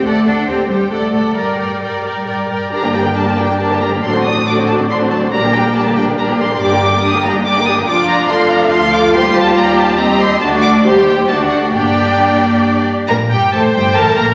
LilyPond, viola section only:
\new Staff \with { instrumentName = "Viola section" } { \time 3/4 \key g \minor \tempo 4 = 138 << { r2. | r2. | d'16 bes16 d'16 bes16 d'16 bes16 d'16 bes16 d'16 bes16 d'16 bes16 | d'16 c'16 d'16 c'16 d'16 c'16 d'16 c'16 d'16 c'16 d'16 c'16 |
d'16 bes16 d'16 bes16 d'16 bes16 d'16 bes16 d'16 bes16 d'16 bes16 | d'16 bes16 d'16 bes16 d'16 bes16 d'16 bes16 d'16 bes16 d'16 bes16 | d'2 f'4~ | f'2 c'4 |
d'4 g'4 d'4 | d'2~ d'8 r8 | r4 c''4 bes'4 | } \\ { a'8 a'8 g'8 g'8 a'8 a'8 | bes'8 bes'8 bes'8 bes'8 bes'8 bes'8 | g16 d16 g16 d16 g16 d16 g16 d16 g16 d16 g16 d16 | fis16 d16 fis16 d16 fis16 d16 fis16 d16 fis16 d16 fis16 d16 |
g16 d16 g16 d16 g16 d16 g16 d16 g16 d16 g16 d16 | g16 d16 g16 d16 g16 d16 g16 d16 g16 d16 g16 d16 | f4 f2 | g2 g4 |
a4 g4 a4 | bes2~ bes8 r8 | r2. | } >> }